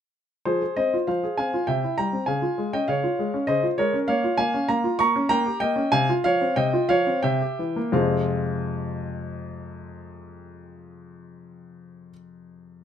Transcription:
0.45 0.61 F3 soft
0.45 0.61 G#4 medium
0.45 0.76 C5 medium
0.62 0.79 G#4 soft
0.76 0.94 C4 soft
0.76 1.06 C5 medium
0.76 0.95 D#5 medium
0.94 1.10 F4 soft
1.07 1.23 F3 soft
1.07 1.37 C5 soft
1.07 1.37 F5 medium
1.24 1.40 G#4 soft
1.37 1.54 C4 soft
1.37 1.67 F5 medium
1.37 1.68 G#5 medium
1.54 1.69 F4 soft
1.67 1.83 C3 medium
1.67 1.96 E5 medium
1.67 1.95 G5 medium
1.84 2.00 E4 soft
1.98 2.14 G3 soft
1.98 2.27 G5 medium
1.98 2.25 A#5 medium
2.13 2.28 C4 soft
2.26 2.43 C#3 soft
2.26 2.70 F5 medium
2.26 2.72 G#5 medium
2.42 2.59 F4 soft
2.58 2.74 G#3 soft
2.73 2.89 C#4 soft
2.73 2.88 D#5 medium
2.73 2.88 G5 medium
2.88 3.03 C#3 soft
2.88 3.44 C#5 medium
2.88 3.43 F5 medium
3.04 3.19 F4 soft
3.19 3.34 G#3 soft
3.34 3.49 C#4 soft
3.47 3.62 C#3 soft
3.47 3.76 C5 medium
3.47 3.65 D#5 medium
3.63 3.79 F4 soft
3.78 3.94 G#3 soft
3.78 4.06 A#4 medium
3.78 3.96 C#5 medium
3.94 4.08 C#4 soft
4.08 4.23 A#3 medium
4.08 4.37 C#5 medium
4.08 4.37 F5 medium
4.24 4.39 F4 soft
4.38 4.54 A#3 soft
4.38 4.67 F5 medium
4.38 4.68 G#5 medium
4.54 4.70 C#4 soft
4.68 4.84 A#3 medium
4.68 4.98 F5 medium
4.68 4.96 A#5 medium
4.84 5.00 F4 soft
4.99 5.16 A#3 soft
4.99 5.28 A#5 medium
4.99 5.30 C#6 loud
5.16 5.31 C#4 soft
5.29 5.45 A#3 medium
5.29 5.59 G5 medium
5.29 5.58 A#5 loud
5.46 5.62 G4 soft
5.60 5.78 A#3 soft
5.60 5.91 D#5 medium
5.60 5.92 G5 medium
5.76 5.92 C#4 soft
5.92 6.08 C3 medium
5.92 6.23 F5 medium
5.92 6.11 G#5 loud
6.09 6.26 F4 medium
6.24 6.42 F3 soft
6.24 6.56 C#5 medium
6.24 6.57 F5 loud
6.41 6.58 C4 medium
6.56 6.73 C3 medium
6.56 6.88 D#5 medium
6.56 6.90 G5 medium
6.73 6.91 F4 medium
6.89 7.08 F3 soft
6.89 7.21 C#5 medium
6.89 7.20 F5 loud
7.07 7.24 C4 medium
7.23 7.40 C3 medium
7.23 7.89 E5 medium
7.23 7.93 G5 medium
7.42 7.60 G4 soft
7.59 7.77 E3 soft
7.76 7.93 A#3 soft
7.92 12.09 F2 medium
7.92 12.10 C3 soft
7.92 12.10 G#3 soft
7.92 12.10 C4 soft
7.92 12.10 F4 soft
7.92 12.11 G#4 soft
7.92 12.10 F5 medium

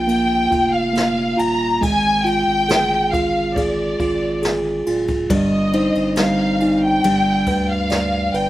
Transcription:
0.00 0.48 A#1 medium
0.00 0.07 A#3 medium
0.00 0.51 F4 medium
0.00 0.73 G5 loud
0.07 0.92 A#3 medium
0.07 ride medium
0.51 1.35 F1 medium
0.51 1.36 F4 medium
0.51 kick medium
0.51 ride medium
0.74 1.39 F5 loud
0.93 1.78 A#3 medium
0.93 ride medium
0.97 snare loud
1.37 1.80 D#1 medium
1.37 1.80 F4 medium
1.37 1.83 A#5 loud
1.37 ride medium
1.81 2.44 G#1 loud
1.81 5.25 G#3 medium
1.81 2.25 G#5 loud
1.81 kick loud
1.81 ride medium
2.24 3.12 F4 medium
2.24 3.13 G5 loud
2.24 ride soft
2.47 3.96 G#1 medium
2.69 3.56 G#4 medium
2.69 snare loud
2.69 ride medium
3.12 3.99 F4 medium
3.12 3.56 F5 medium
3.12 kick medium
3.12 ride medium
3.56 4.41 G#4 medium
3.56 4.87 D5 medium
3.56 kick loud
3.56 ride medium
4.00 4.83 G#1 medium
4.00 4.86 F4 medium
4.00 kick medium
4.00 ride medium
4.43 5.27 G#4 medium
4.43 snare loud
4.43 ride medium
4.86 5.27 D1 medium
4.86 5.29 F4 medium
4.86 ride medium
5.08 kick medium
5.08 ride soft
5.30 5.91 G1 loud
5.30 7.03 G2 medium
5.30 6.17 G3 medium
5.30 6.14 D#5 medium
5.30 kick loud
5.30 ride medium
5.74 7.13 C4 medium
5.74 6.61 D#4 medium
5.74 ride soft
5.95 7.00 G1 loud
5.95 ride soft
6.16 7.02 G3 medium
6.16 7.13 D#4 medium
6.16 6.79 F5 medium
6.16 snare loud
6.16 ride medium
6.60 7.03 D#4 medium
6.60 ride medium
6.84 7.70 G5 loud
7.04 7.44 G1 loud
7.04 8.50 G2 medium
7.04 8.50 G3 medium
7.04 ride medium
7.46 8.30 D2 medium
7.46 8.33 B4 medium
7.46 kick medium
7.46 ride medium
7.70 8.35 F5 medium
7.89 8.50 D5 medium
7.89 snare loud
7.89 ride medium
8.33 8.50 G1 medium
8.33 8.50 B4 medium
8.33 8.50 G5 medium
8.33 ride medium

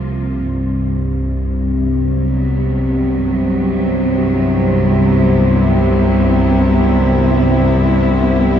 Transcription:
0.00 8.60 C2 medium
0.00 0.44 C3 medium
0.00 8.60 C3 medium
0.00 0.42 F3 medium
0.00 0.42 A#3 medium
0.00 0.44 F4 medium
0.43 8.60 G2 medium
2.05 8.60 F#3 medium
2.23 8.60 B3 medium
4.75 8.60 E4 medium

